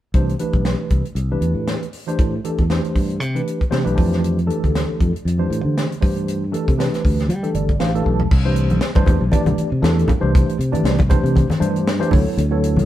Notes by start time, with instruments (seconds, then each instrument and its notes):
0.14 fingered electric bass C2, tine electric piano E3 A3 D4 G4 C5, kick, closed hi-hat
0.29 closed hi-hat
0.39 tine electric piano E3 A3 D4 G4 B4, closed hi-hat
0.53 fingered electric bass B1, kick, closed hi-hat
0.65 snare, closed hi-hat
0.90 fingered electric bass C2, kick, closed hi-hat
1.05 closed hi-hat
1.15 fingered electric bass C2, closed hi-hat
1.31 tine electric piano E3 A3 D4 G4 B4
1.41 fingered electric bass E2, closed hi-hat
1.55 fingered electric bass A2
1.67 snare, closed hi-hat
1.83 closed hi-hat
1.93 open hi-hat
2.07 tine electric piano E3 A3 D4 G4 C5, closed hi-hat
2.19 fingered electric bass A2, kick, closed hi-hat
2.44 tine electric piano E3 A3 D4 G4 A4, closed hi-hat
2.58 fingered electric bass E2, kick, closed hi-hat
2.70 tine electric piano E3 A3 D4 G4 C5, snare, closed hi-hat
2.84 closed hi-hat
2.95 fingered electric bass G2, kick, open hi-hat
3.10 closed hi-hat
3.20 fingered electric bass C3, closed hi-hat
3.35 tine electric piano E3 A3 D4 G4 B4, closed hi-hat
3.47 closed hi-hat
3.61 kick, closed hi-hat
3.70 fingered electric bass C3, tine electric piano E3 A3 D4 G4 C5, snare, closed hi-hat
3.84 fingered electric bass B1, tine electric piano E3 A3 D4 G4 B4, closed hi-hat
3.95 fingered electric bass F2, tine electric piano E3 A3 D4 G4 C5, kick, open hi-hat
4.13 snare, closed hi-hat
4.24 closed hi-hat
4.38 closed hi-hat
4.47 tine electric piano E3 A3 D4 G4 A4, closed hi-hat
4.64 fingered electric bass D2, kick, closed hi-hat
4.75 snare, closed hi-hat
5.00 fingered electric bass F2, kick, closed hi-hat
5.16 closed hi-hat
5.25 fingered electric bass F2, closed hi-hat
5.38 tine electric piano E3 A3 D4 G4 C5
5.50 fingered electric bass A2, closed hi-hat
5.65 fingered electric bass D3
5.78 snare, closed hi-hat
5.92 closed hi-hat
6.01 fingered electric bass G2, tine electric piano E3 A3 D4 G4 C5, kick, open hi-hat
6.17 closed hi-hat
6.28 closed hi-hat
6.52 tine electric piano E3 A3 D4 G4 A4, closed hi-hat
6.68 fingered electric bass C3, kick, closed hi-hat
6.78 tine electric piano E3 A3 D4 G4 B4, snare, closed hi-hat
6.94 snare, closed hi-hat
7.05 fingered electric bass D2, kick, open hi-hat
7.19 snare, closed hi-hat
7.29 fingered electric bass G3, closed hi-hat
7.43 tine electric piano E3 A3 D4 G4 A4, closed hi-hat
7.54 fingered electric bass G1, tine electric piano D5, closed hi-hat
7.69 kick, closed hi-hat
7.80 fingered electric bass A1, tine electric piano E3 A3 D4 G4 C5 F5, snare, closed hi-hat
7.95 tine electric piano E3 A3 D4 G4 A4, closed hi-hat
8.06 fingered electric bass B1, tine electric piano A5, kick
8.20 floor tom
8.31 fingered electric bass C2, kick, crash
8.45 tine electric piano E3 A3 D4 G4 C5
8.56 closed hi-hat
8.70 fingered electric bass B1, closed hi-hat, high conga
8.81 snare, closed hi-hat
8.95 fingered electric bass G2, tine electric piano E3 A3 D4 G4 C5, kick, closed hi-hat, high conga
9.06 fingered electric bass E2, kick, closed hi-hat, low conga
9.21 fingered electric bass B1
9.31 tine electric piano E3 A3 D4 G4 D5, kick, closed hi-hat, high conga
9.46 fingered electric bass C2, closed hi-hat, high conga
9.58 closed hi-hat
9.72 fingered electric bass C3
9.82 fingered electric bass E2, tine electric piano E3 A3 D4 G4 A4, snare, closed hi-hat
9.99 closed hi-hat
10.08 kick, closed hi-hat, low conga
10.20 fingered electric bass C2, tine electric piano E3 A3 D4 G4 C5
10.35 kick, closed hi-hat
10.49 closed hi-hat
10.59 fingered electric bass C3, closed hi-hat
10.72 tine electric piano E3 A3 D4 G4 D5, closed hi-hat, high conga
10.83 fingered electric bass C2, snare, closed hi-hat
10.99 kick, closed hi-hat, high conga
11.09 tine electric piano E3 A3 D4 G4 C5, kick, closed hi-hat, low conga
11.24 fingered electric bass C3, closed hi-hat
11.35 kick, closed hi-hat, high conga
11.49 muted fingered electric bass stroke, snare, closed hi-hat, high conga
11.59 fingered electric bass G2, tine electric piano E3 A3 D4 G4 C5, closed hi-hat
11.76 closed hi-hat
11.87 snare, closed hi-hat
12.00 tine electric piano E3 A3 D4 G4 C5, closed hi-hat
12.10 fingered electric bass D2, tine electric piano F#3 B3 E4 A4 C#5, kick, open hi-hat, low conga
12.37 fingered electric bass D2, closed hi-hat
12.51 tine electric piano F#3 B3 E4 A4 C#5
12.63 closed hi-hat
12.76 fingered electric bass C#2, closed hi-hat, high conga